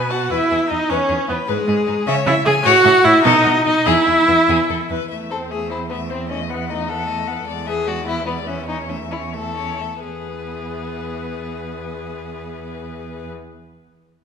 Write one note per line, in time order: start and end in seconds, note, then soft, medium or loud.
0.00 0.24 B2 medium
0.00 0.12 B3 medium
0.00 0.13 B4 medium
0.00 0.12 G#5 medium
0.10 0.32 F#4 medium
0.10 0.33 F#5 medium
0.10 0.29 A5 medium
0.30 0.39 E2 medium
0.30 0.69 E4 medium
0.30 0.49 B4 medium
0.30 0.71 E5 medium
0.50 0.59 E2 medium
0.50 0.58 G#4 medium
0.70 0.79 E2 medium
0.70 0.91 D#4 medium
0.70 0.78 E4 medium
0.70 0.91 D#5 medium
0.89 0.98 E2 medium
0.89 1.28 C#4 medium
0.89 1.08 B4 medium
0.89 1.28 C#5 medium
1.08 1.17 E2 medium
1.08 1.16 G#4 medium
1.27 1.37 E2 medium
1.27 1.37 B3 medium
1.27 1.35 E4 medium
1.27 1.50 B4 medium
1.47 1.56 G#2 medium
1.47 2.06 G#3 medium
1.47 2.10 G#4 medium
1.47 1.66 B4 medium
1.68 1.76 G#2 medium
1.68 1.76 G#4 medium
1.87 1.96 G#2 medium
1.87 1.95 D#4 medium
2.06 2.15 C#3 loud
2.06 2.15 C#4 loud
2.06 2.29 C#5 medium
2.06 2.25 E5 medium
2.26 2.34 C#3 medium
2.26 2.34 E4 loud
2.26 2.34 C#5 medium
2.26 2.46 E5 loud
2.46 2.54 C#3 medium
2.46 2.53 G#4 loud
2.46 2.54 G#4 medium
2.46 2.67 G#5 loud
2.64 2.73 A2 loud
2.64 3.06 F#4 loud
2.64 2.83 C#5 loud
2.64 3.07 F#5 loud
2.84 2.93 A2 medium
2.84 2.92 A4 medium
3.04 3.13 A2 medium
3.04 3.12 E4 medium
3.04 3.24 E4 loud
3.04 3.27 E5 loud
3.24 3.33 B2 loud
3.24 3.64 D#4 loud
3.24 3.43 A4 loud
3.24 3.66 D#5 loud
3.44 3.53 B2 medium
3.44 3.52 F#4 medium
3.65 3.74 B2 medium
3.65 3.88 D#4 loud
3.65 3.73 D#4 medium
3.65 3.88 D#5 loud
3.85 3.95 E2 loud
3.85 4.90 E4 loud
3.85 4.05 G#4 medium
3.85 4.90 E5 loud
4.06 4.15 E2 medium
4.06 4.14 E4 medium
4.27 4.36 E2 medium
4.27 4.35 B3 medium
4.49 4.57 E2 medium
4.49 4.57 G#4 medium
4.69 4.77 E2 medium
4.69 4.78 A4 medium
4.90 4.98 E2 medium
4.90 5.10 B4 medium
5.10 7.44 E2 medium
5.10 5.32 A3 soft
5.10 5.32 E5 soft
5.30 5.52 C4 soft
5.30 5.39 A4 medium
5.30 5.53 C5 soft
5.51 5.73 A3 soft
5.51 5.70 G#4 medium
5.51 5.72 E5 soft
5.70 5.90 C4 soft
5.70 5.78 E4 medium
5.70 5.90 C5 soft
5.90 6.12 A3 soft
5.90 5.98 B3 medium
5.90 6.12 E5 soft
6.10 6.30 C4 soft
6.10 6.29 C5 soft
6.30 6.52 A3 soft
6.30 6.38 C#4 medium
6.30 6.51 D#5 soft
6.50 6.69 B3 medium
6.50 6.71 B3 soft
6.50 6.72 F#5 soft
6.70 6.91 A3 soft
6.70 6.90 D#4 medium
6.70 6.90 D#5 soft
6.89 7.08 B3 soft
6.89 7.48 A4 medium
6.89 7.08 F#5 soft
7.09 7.30 A3 soft
7.09 7.29 D#5 soft
7.28 7.47 B3 soft
7.28 7.47 F#5 soft
7.48 9.77 E2 medium
7.48 7.68 G#3 soft
7.48 7.68 D5 soft
7.66 7.88 B3 soft
7.66 7.89 G#4 medium
7.66 7.89 E5 soft
7.87 8.08 G#3 soft
7.87 8.06 F#4 medium
7.87 8.08 D5 soft
8.06 8.25 B3 soft
8.06 8.26 E4 medium
8.06 8.27 E5 soft
8.26 8.48 G#3 soft
8.26 8.34 B3 medium
8.26 8.49 D5 soft
8.47 8.67 B3 soft
8.47 8.67 C#4 medium
8.47 8.68 E5 soft
8.68 8.91 C#4 soft
8.68 8.76 D#4 medium
8.68 8.91 C#5 soft
8.89 9.12 A3 soft
8.89 8.97 C#4 soft
8.89 9.13 E5 soft
9.11 9.35 C#4 soft
9.11 9.20 E4 medium
9.11 9.35 C#5 soft
9.33 9.56 A3 soft
9.33 10.04 A4 medium
9.33 9.56 E5 soft
9.57 9.82 C#4 soft
9.57 9.83 C#5 soft
9.81 10.04 A3 soft
9.81 10.03 E5 soft
10.04 13.29 E2 soft
10.04 13.29 B3 soft
10.04 13.29 G#4 soft
10.04 13.28 B4 soft